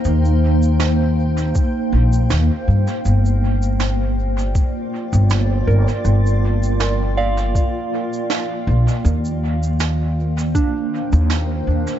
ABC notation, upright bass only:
X:1
M:4/4
L:1/16
Q:"Swing 16ths" 1/4=80
K:Gm
V:1 name="Upright bass" clef=bass
E,,8 z2 B,,,2 E,, z G,, z | G,,,8 z3 G,,,3 G,,, z | G,,,8 z6 B,,, z | E,,8 z3 E,,3 E,, z |]